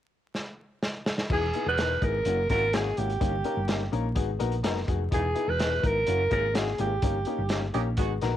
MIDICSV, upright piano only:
0, 0, Header, 1, 2, 480
1, 0, Start_track
1, 0, Tempo, 477327
1, 1307, Time_signature, 4, 2, 24, 8
1, 8416, End_track
2, 0, Start_track
2, 0, Title_t, "Upright piano"
2, 0, Program_c, 0, 0
2, 1302, Note_on_c, 0, 59, 79
2, 1307, Note_on_c, 0, 63, 71
2, 1312, Note_on_c, 0, 64, 70
2, 1316, Note_on_c, 0, 68, 88
2, 1433, Note_off_c, 0, 59, 0
2, 1435, Note_off_c, 0, 63, 0
2, 1438, Note_off_c, 0, 64, 0
2, 1440, Note_off_c, 0, 68, 0
2, 1547, Note_on_c, 0, 59, 73
2, 1551, Note_on_c, 0, 63, 65
2, 1555, Note_on_c, 0, 64, 57
2, 1561, Note_on_c, 0, 68, 72
2, 1676, Note_off_c, 0, 59, 0
2, 1678, Note_off_c, 0, 63, 0
2, 1680, Note_off_c, 0, 64, 0
2, 1682, Note_off_c, 0, 68, 0
2, 1788, Note_on_c, 0, 59, 60
2, 1792, Note_on_c, 0, 63, 60
2, 1794, Note_on_c, 0, 64, 50
2, 1799, Note_on_c, 0, 70, 66
2, 1916, Note_off_c, 0, 59, 0
2, 1918, Note_off_c, 0, 63, 0
2, 1919, Note_off_c, 0, 64, 0
2, 1922, Note_off_c, 0, 70, 0
2, 2024, Note_on_c, 0, 63, 62
2, 2025, Note_on_c, 0, 59, 68
2, 2031, Note_on_c, 0, 64, 59
2, 2037, Note_on_c, 0, 68, 74
2, 2155, Note_off_c, 0, 59, 0
2, 2155, Note_off_c, 0, 63, 0
2, 2158, Note_off_c, 0, 64, 0
2, 2161, Note_off_c, 0, 68, 0
2, 2270, Note_on_c, 0, 58, 64
2, 2272, Note_on_c, 0, 61, 61
2, 2275, Note_on_c, 0, 64, 64
2, 2283, Note_on_c, 0, 66, 75
2, 2398, Note_off_c, 0, 58, 0
2, 2399, Note_off_c, 0, 61, 0
2, 2400, Note_off_c, 0, 64, 0
2, 2404, Note_off_c, 0, 66, 0
2, 2511, Note_on_c, 0, 58, 82
2, 2516, Note_on_c, 0, 61, 71
2, 2519, Note_on_c, 0, 64, 68
2, 2524, Note_on_c, 0, 66, 93
2, 2638, Note_off_c, 0, 58, 0
2, 2641, Note_off_c, 0, 61, 0
2, 2642, Note_off_c, 0, 64, 0
2, 2645, Note_off_c, 0, 66, 0
2, 2749, Note_on_c, 0, 58, 85
2, 2754, Note_on_c, 0, 61, 81
2, 2755, Note_on_c, 0, 64, 81
2, 2762, Note_on_c, 0, 66, 92
2, 2877, Note_off_c, 0, 58, 0
2, 2880, Note_off_c, 0, 61, 0
2, 2880, Note_off_c, 0, 64, 0
2, 2884, Note_off_c, 0, 66, 0
2, 2992, Note_on_c, 0, 58, 55
2, 2995, Note_on_c, 0, 61, 54
2, 3002, Note_on_c, 0, 64, 59
2, 3002, Note_on_c, 0, 66, 62
2, 3119, Note_off_c, 0, 58, 0
2, 3120, Note_off_c, 0, 61, 0
2, 3124, Note_off_c, 0, 64, 0
2, 3124, Note_off_c, 0, 66, 0
2, 3221, Note_on_c, 0, 58, 85
2, 3222, Note_on_c, 0, 61, 69
2, 3224, Note_on_c, 0, 63, 75
2, 3231, Note_on_c, 0, 67, 84
2, 3353, Note_off_c, 0, 58, 0
2, 3354, Note_off_c, 0, 61, 0
2, 3355, Note_off_c, 0, 63, 0
2, 3358, Note_off_c, 0, 67, 0
2, 3463, Note_on_c, 0, 58, 70
2, 3463, Note_on_c, 0, 61, 63
2, 3468, Note_on_c, 0, 63, 59
2, 3471, Note_on_c, 0, 70, 79
2, 3595, Note_off_c, 0, 58, 0
2, 3595, Note_off_c, 0, 61, 0
2, 3597, Note_off_c, 0, 63, 0
2, 3599, Note_off_c, 0, 70, 0
2, 3695, Note_on_c, 0, 58, 74
2, 3700, Note_on_c, 0, 61, 61
2, 3702, Note_on_c, 0, 63, 63
2, 3706, Note_on_c, 0, 67, 68
2, 3831, Note_off_c, 0, 58, 0
2, 3833, Note_off_c, 0, 61, 0
2, 3834, Note_off_c, 0, 63, 0
2, 3836, Note_off_c, 0, 67, 0
2, 3940, Note_on_c, 0, 58, 71
2, 3943, Note_on_c, 0, 61, 74
2, 3944, Note_on_c, 0, 63, 68
2, 3949, Note_on_c, 0, 70, 93
2, 4073, Note_off_c, 0, 58, 0
2, 4075, Note_off_c, 0, 61, 0
2, 4075, Note_off_c, 0, 63, 0
2, 4078, Note_off_c, 0, 70, 0
2, 4173, Note_on_c, 0, 59, 80
2, 4175, Note_on_c, 0, 63, 76
2, 4178, Note_on_c, 0, 66, 73
2, 4183, Note_on_c, 0, 68, 87
2, 4309, Note_off_c, 0, 59, 0
2, 4311, Note_off_c, 0, 63, 0
2, 4312, Note_off_c, 0, 66, 0
2, 4314, Note_off_c, 0, 68, 0
2, 4414, Note_on_c, 0, 59, 94
2, 4418, Note_on_c, 0, 63, 86
2, 4422, Note_on_c, 0, 66, 90
2, 4424, Note_on_c, 0, 70, 104
2, 4550, Note_off_c, 0, 59, 0
2, 4552, Note_off_c, 0, 63, 0
2, 4554, Note_off_c, 0, 66, 0
2, 4555, Note_off_c, 0, 70, 0
2, 4656, Note_on_c, 0, 59, 101
2, 4658, Note_on_c, 0, 63, 87
2, 4665, Note_on_c, 0, 66, 89
2, 4668, Note_on_c, 0, 70, 119
2, 4791, Note_off_c, 0, 59, 0
2, 4792, Note_off_c, 0, 63, 0
2, 4796, Note_off_c, 0, 66, 0
2, 4797, Note_off_c, 0, 70, 0
2, 4898, Note_on_c, 0, 59, 64
2, 4899, Note_on_c, 0, 63, 63
2, 4900, Note_on_c, 0, 66, 68
2, 4905, Note_on_c, 0, 68, 79
2, 5032, Note_off_c, 0, 59, 0
2, 5032, Note_off_c, 0, 63, 0
2, 5033, Note_off_c, 0, 66, 0
2, 5036, Note_off_c, 0, 68, 0
2, 5139, Note_on_c, 0, 59, 80
2, 5140, Note_on_c, 0, 63, 73
2, 5145, Note_on_c, 0, 64, 82
2, 5147, Note_on_c, 0, 68, 86
2, 5272, Note_off_c, 0, 59, 0
2, 5273, Note_off_c, 0, 63, 0
2, 5275, Note_off_c, 0, 64, 0
2, 5276, Note_off_c, 0, 68, 0
2, 5374, Note_on_c, 0, 59, 68
2, 5378, Note_on_c, 0, 63, 68
2, 5380, Note_on_c, 0, 68, 73
2, 5381, Note_on_c, 0, 64, 69
2, 5510, Note_off_c, 0, 59, 0
2, 5512, Note_off_c, 0, 63, 0
2, 5513, Note_off_c, 0, 64, 0
2, 5513, Note_off_c, 0, 68, 0
2, 5619, Note_on_c, 0, 59, 56
2, 5620, Note_on_c, 0, 63, 53
2, 5622, Note_on_c, 0, 64, 53
2, 5626, Note_on_c, 0, 68, 68
2, 5752, Note_off_c, 0, 59, 0
2, 5753, Note_off_c, 0, 63, 0
2, 5754, Note_off_c, 0, 64, 0
2, 5756, Note_off_c, 0, 68, 0
2, 5852, Note_on_c, 0, 59, 75
2, 5857, Note_on_c, 0, 63, 62
2, 5860, Note_on_c, 0, 64, 63
2, 5863, Note_on_c, 0, 70, 74
2, 5988, Note_off_c, 0, 59, 0
2, 5991, Note_off_c, 0, 63, 0
2, 5992, Note_off_c, 0, 64, 0
2, 5994, Note_off_c, 0, 70, 0
2, 6100, Note_on_c, 0, 58, 67
2, 6106, Note_on_c, 0, 61, 63
2, 6109, Note_on_c, 0, 64, 63
2, 6113, Note_on_c, 0, 66, 67
2, 6233, Note_off_c, 0, 58, 0
2, 6236, Note_off_c, 0, 61, 0
2, 6237, Note_off_c, 0, 64, 0
2, 6239, Note_off_c, 0, 66, 0
2, 6341, Note_on_c, 0, 58, 80
2, 6346, Note_on_c, 0, 61, 73
2, 6346, Note_on_c, 0, 64, 69
2, 6353, Note_on_c, 0, 68, 99
2, 6473, Note_off_c, 0, 58, 0
2, 6475, Note_off_c, 0, 61, 0
2, 6475, Note_off_c, 0, 64, 0
2, 6479, Note_off_c, 0, 68, 0
2, 6574, Note_on_c, 0, 58, 76
2, 6577, Note_on_c, 0, 61, 69
2, 6579, Note_on_c, 0, 64, 76
2, 6587, Note_on_c, 0, 66, 99
2, 6709, Note_off_c, 0, 58, 0
2, 6711, Note_off_c, 0, 61, 0
2, 6712, Note_off_c, 0, 64, 0
2, 6716, Note_off_c, 0, 66, 0
2, 6822, Note_on_c, 0, 58, 64
2, 6828, Note_on_c, 0, 61, 53
2, 6831, Note_on_c, 0, 64, 63
2, 6832, Note_on_c, 0, 68, 73
2, 6953, Note_off_c, 0, 58, 0
2, 6956, Note_off_c, 0, 61, 0
2, 6958, Note_off_c, 0, 64, 0
2, 6958, Note_off_c, 0, 68, 0
2, 7064, Note_on_c, 0, 58, 80
2, 7066, Note_on_c, 0, 61, 70
2, 7071, Note_on_c, 0, 67, 82
2, 7072, Note_on_c, 0, 63, 70
2, 7194, Note_off_c, 0, 58, 0
2, 7195, Note_off_c, 0, 61, 0
2, 7198, Note_off_c, 0, 63, 0
2, 7198, Note_off_c, 0, 67, 0
2, 7304, Note_on_c, 0, 58, 65
2, 7307, Note_on_c, 0, 61, 59
2, 7310, Note_on_c, 0, 63, 63
2, 7314, Note_on_c, 0, 67, 73
2, 7434, Note_off_c, 0, 58, 0
2, 7435, Note_off_c, 0, 61, 0
2, 7437, Note_off_c, 0, 63, 0
2, 7439, Note_off_c, 0, 67, 0
2, 7541, Note_on_c, 0, 58, 70
2, 7545, Note_on_c, 0, 61, 63
2, 7545, Note_on_c, 0, 63, 60
2, 7547, Note_on_c, 0, 67, 78
2, 7672, Note_off_c, 0, 58, 0
2, 7674, Note_off_c, 0, 61, 0
2, 7674, Note_off_c, 0, 63, 0
2, 7675, Note_off_c, 0, 67, 0
2, 7780, Note_on_c, 0, 58, 82
2, 7782, Note_on_c, 0, 63, 77
2, 7784, Note_on_c, 0, 61, 74
2, 7789, Note_on_c, 0, 67, 96
2, 7912, Note_off_c, 0, 58, 0
2, 7912, Note_off_c, 0, 63, 0
2, 7913, Note_off_c, 0, 61, 0
2, 7916, Note_off_c, 0, 67, 0
2, 8022, Note_on_c, 0, 59, 78
2, 8030, Note_on_c, 0, 63, 79
2, 8031, Note_on_c, 0, 66, 72
2, 8031, Note_on_c, 0, 68, 92
2, 8152, Note_off_c, 0, 59, 0
2, 8156, Note_off_c, 0, 63, 0
2, 8157, Note_off_c, 0, 66, 0
2, 8157, Note_off_c, 0, 68, 0
2, 8262, Note_on_c, 0, 63, 90
2, 8263, Note_on_c, 0, 59, 90
2, 8269, Note_on_c, 0, 66, 86
2, 8273, Note_on_c, 0, 70, 109
2, 8392, Note_off_c, 0, 63, 0
2, 8393, Note_off_c, 0, 59, 0
2, 8395, Note_off_c, 0, 66, 0
2, 8398, Note_off_c, 0, 70, 0
2, 8416, End_track
0, 0, End_of_file